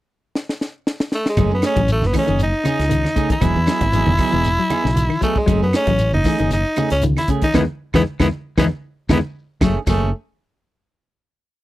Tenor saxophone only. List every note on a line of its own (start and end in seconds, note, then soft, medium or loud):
1.15 1.26 A3 medium
1.30 1.52 G#3 medium
1.54 1.64 B3 medium
1.66 1.89 C#4 medium
1.92 2.08 A3 medium
2.06 2.16 B3 medium
2.18 2.40 C#4 medium
2.43 3.28 D#4 loud
3.32 5.19 E4 loud
5.23 5.40 A3 medium
5.39 5.62 G#3 medium
5.63 5.74 B3 medium
5.76 6.12 C#4 loud
6.14 6.49 D#4 medium
6.53 6.89 D#4 medium
6.92 7.03 C#4 medium
7.18 7.29 E4 medium
7.44 7.54 D#4 medium
7.56 7.62 B3 medium
7.96 8.02 B3 medium
8.21 8.27 B3 medium
8.59 8.65 B3 medium
9.12 9.18 B3 medium
9.63 9.77 A3 medium
9.88 10.11 A3 medium